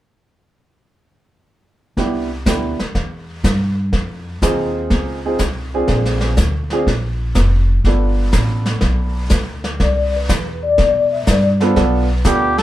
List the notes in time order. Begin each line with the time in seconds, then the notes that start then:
1.97 C2 B3 D4 E4 G4, brush sweep, kick, snare
2.46 D2 B3 D4 E4 G4, kick, snare, hi-hat pedal
2.79 muted upright bass stroke, snare
2.95 E2, brush sweep, kick, snare
3.44 G2, kick, snare, hi-hat pedal
3.93 F2, brush sweep, kick, snare
4.42 D#2 C4 D#4 F4 G#4, kick, snare, hi-hat pedal
4.90 C#2, brush sweep, kick, snare
5.25 C4 D#4 F4 G#4
5.39 C2, kick, snare, hi-hat pedal
5.74 C4 D4 F4 G#4
5.88 A#1, brush sweep, kick, snare
6.05 snare
6.21 snare
6.37 D2, kick, snare, hi-hat pedal
6.70 C4 D4 F4 G#4, snare
6.87 A#1, brush sweep, kick, snare
7.35 F1, kick, snare, hi-hat pedal
7.84 G1 B3 D4 F4 A4, brush sweep, kick, snare
8.32 A1, kick, snare, hi-hat pedal
8.66 snare
8.81 B1, brush sweep, kick, snare
9.29 D2, kick, snare, hi-hat pedal
9.64 snare
9.80 C2 D5, brush sweep, kick, snare
10.16 B4
10.29 E2, kick, snare, hi-hat pedal
10.63 D5
10.78 B2, brush sweep, kick, snare
11.12 E5
11.27 G2 D5, kick, snare, hi-hat pedal
11.60 B3 D4 F4 A4 C5, snare
11.76 B1 B3 D4 F4 A4, brush sweep, kick, snare
12.24 D2 B3 D4 F4 G4 A4, kick, snare, hi-hat pedal
12.58 A4, snare